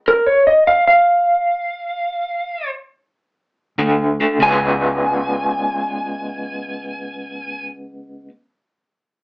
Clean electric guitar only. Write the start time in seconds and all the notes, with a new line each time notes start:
3.79 D3 A3
4.20 D3 A3
4.40 C#3 G#3 B3 F4